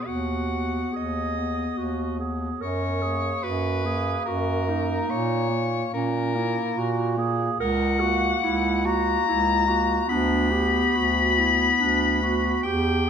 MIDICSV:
0, 0, Header, 1, 5, 480
1, 0, Start_track
1, 0, Tempo, 881057
1, 33, Time_signature, 3, 2, 24, 8
1, 512, Tempo, 833333
1, 5792, Tempo, 847458
1, 7486, End_track
2, 0, Start_track
2, 0, Title_t, "Soprano saxophone"
2, 0, Program_c, 0, 64
2, 34, Note_on_c, 0, 78, 82
2, 512, Note_off_c, 0, 78, 0
2, 523, Note_on_c, 0, 75, 82
2, 1228, Note_off_c, 0, 75, 0
2, 1482, Note_on_c, 0, 73, 87
2, 1946, Note_on_c, 0, 71, 92
2, 1955, Note_off_c, 0, 73, 0
2, 2415, Note_off_c, 0, 71, 0
2, 2419, Note_on_c, 0, 70, 89
2, 2909, Note_on_c, 0, 73, 96
2, 2918, Note_off_c, 0, 70, 0
2, 3387, Note_off_c, 0, 73, 0
2, 3390, Note_on_c, 0, 70, 100
2, 4093, Note_off_c, 0, 70, 0
2, 4352, Note_on_c, 0, 78, 118
2, 5070, Note_on_c, 0, 82, 115
2, 5078, Note_off_c, 0, 78, 0
2, 5778, Note_off_c, 0, 82, 0
2, 5781, Note_on_c, 0, 83, 116
2, 7207, Note_off_c, 0, 83, 0
2, 7221, Note_on_c, 0, 79, 103
2, 7486, Note_off_c, 0, 79, 0
2, 7486, End_track
3, 0, Start_track
3, 0, Title_t, "Clarinet"
3, 0, Program_c, 1, 71
3, 36, Note_on_c, 1, 66, 63
3, 506, Note_on_c, 1, 68, 67
3, 514, Note_off_c, 1, 66, 0
3, 993, Note_on_c, 1, 66, 63
3, 1002, Note_off_c, 1, 68, 0
3, 1232, Note_off_c, 1, 66, 0
3, 1235, Note_on_c, 1, 68, 64
3, 1473, Note_on_c, 1, 70, 75
3, 1481, Note_off_c, 1, 68, 0
3, 1711, Note_on_c, 1, 68, 67
3, 1719, Note_off_c, 1, 70, 0
3, 1951, Note_on_c, 1, 66, 74
3, 1960, Note_off_c, 1, 68, 0
3, 2194, Note_on_c, 1, 68, 74
3, 2203, Note_off_c, 1, 66, 0
3, 2432, Note_on_c, 1, 66, 75
3, 2441, Note_off_c, 1, 68, 0
3, 2673, Note_on_c, 1, 63, 77
3, 2681, Note_off_c, 1, 66, 0
3, 3241, Note_off_c, 1, 63, 0
3, 3382, Note_on_c, 1, 61, 65
3, 3635, Note_on_c, 1, 64, 75
3, 3643, Note_off_c, 1, 61, 0
3, 3878, Note_on_c, 1, 66, 69
3, 3886, Note_off_c, 1, 64, 0
3, 4108, Note_on_c, 1, 68, 82
3, 4117, Note_off_c, 1, 66, 0
3, 4346, Note_off_c, 1, 68, 0
3, 4349, Note_on_c, 1, 70, 98
3, 4579, Note_on_c, 1, 66, 83
3, 4587, Note_off_c, 1, 70, 0
3, 4823, Note_off_c, 1, 66, 0
3, 4826, Note_on_c, 1, 64, 85
3, 5063, Note_off_c, 1, 64, 0
3, 5067, Note_on_c, 1, 66, 89
3, 5305, Note_off_c, 1, 66, 0
3, 5318, Note_on_c, 1, 64, 77
3, 5545, Note_on_c, 1, 66, 87
3, 5554, Note_off_c, 1, 64, 0
3, 5793, Note_on_c, 1, 62, 86
3, 5801, Note_off_c, 1, 66, 0
3, 6021, Note_on_c, 1, 67, 80
3, 6030, Note_off_c, 1, 62, 0
3, 6276, Note_on_c, 1, 66, 74
3, 6285, Note_off_c, 1, 67, 0
3, 6516, Note_on_c, 1, 64, 81
3, 6524, Note_off_c, 1, 66, 0
3, 6754, Note_on_c, 1, 62, 81
3, 6763, Note_off_c, 1, 64, 0
3, 6989, Note_off_c, 1, 62, 0
3, 6992, Note_on_c, 1, 66, 83
3, 7234, Note_on_c, 1, 67, 88
3, 7243, Note_off_c, 1, 66, 0
3, 7483, Note_off_c, 1, 67, 0
3, 7486, End_track
4, 0, Start_track
4, 0, Title_t, "Clarinet"
4, 0, Program_c, 2, 71
4, 31, Note_on_c, 2, 59, 47
4, 271, Note_off_c, 2, 59, 0
4, 274, Note_on_c, 2, 59, 50
4, 743, Note_off_c, 2, 59, 0
4, 751, Note_on_c, 2, 59, 51
4, 1225, Note_off_c, 2, 59, 0
4, 1230, Note_on_c, 2, 59, 56
4, 1470, Note_off_c, 2, 59, 0
4, 1705, Note_on_c, 2, 58, 52
4, 2175, Note_off_c, 2, 58, 0
4, 2186, Note_on_c, 2, 58, 55
4, 2655, Note_off_c, 2, 58, 0
4, 2658, Note_on_c, 2, 58, 64
4, 2894, Note_off_c, 2, 58, 0
4, 2898, Note_on_c, 2, 58, 68
4, 3134, Note_off_c, 2, 58, 0
4, 3138, Note_on_c, 2, 58, 62
4, 3617, Note_off_c, 2, 58, 0
4, 3626, Note_on_c, 2, 58, 67
4, 4096, Note_off_c, 2, 58, 0
4, 4102, Note_on_c, 2, 58, 71
4, 4342, Note_off_c, 2, 58, 0
4, 4583, Note_on_c, 2, 58, 69
4, 5059, Note_off_c, 2, 58, 0
4, 5069, Note_on_c, 2, 58, 67
4, 5540, Note_off_c, 2, 58, 0
4, 5543, Note_on_c, 2, 58, 71
4, 5774, Note_off_c, 2, 58, 0
4, 5778, Note_on_c, 2, 59, 72
4, 6016, Note_off_c, 2, 59, 0
4, 6020, Note_on_c, 2, 59, 71
4, 6495, Note_off_c, 2, 59, 0
4, 6502, Note_on_c, 2, 59, 65
4, 6980, Note_off_c, 2, 59, 0
4, 6993, Note_on_c, 2, 59, 67
4, 7229, Note_off_c, 2, 59, 0
4, 7486, End_track
5, 0, Start_track
5, 0, Title_t, "Bass clarinet"
5, 0, Program_c, 3, 71
5, 33, Note_on_c, 3, 39, 62
5, 456, Note_off_c, 3, 39, 0
5, 510, Note_on_c, 3, 39, 56
5, 937, Note_off_c, 3, 39, 0
5, 988, Note_on_c, 3, 39, 61
5, 1418, Note_off_c, 3, 39, 0
5, 1473, Note_on_c, 3, 42, 71
5, 1892, Note_off_c, 3, 42, 0
5, 1943, Note_on_c, 3, 42, 72
5, 2368, Note_off_c, 3, 42, 0
5, 2423, Note_on_c, 3, 42, 74
5, 2848, Note_off_c, 3, 42, 0
5, 2905, Note_on_c, 3, 46, 82
5, 3336, Note_off_c, 3, 46, 0
5, 3386, Note_on_c, 3, 46, 75
5, 3763, Note_off_c, 3, 46, 0
5, 3861, Note_on_c, 3, 46, 79
5, 4289, Note_off_c, 3, 46, 0
5, 4346, Note_on_c, 3, 37, 93
5, 4773, Note_off_c, 3, 37, 0
5, 4824, Note_on_c, 3, 37, 89
5, 5252, Note_off_c, 3, 37, 0
5, 5310, Note_on_c, 3, 37, 91
5, 5733, Note_off_c, 3, 37, 0
5, 5785, Note_on_c, 3, 38, 89
5, 6210, Note_off_c, 3, 38, 0
5, 6264, Note_on_c, 3, 38, 80
5, 6691, Note_off_c, 3, 38, 0
5, 6742, Note_on_c, 3, 38, 81
5, 7173, Note_off_c, 3, 38, 0
5, 7226, Note_on_c, 3, 40, 88
5, 7486, Note_off_c, 3, 40, 0
5, 7486, End_track
0, 0, End_of_file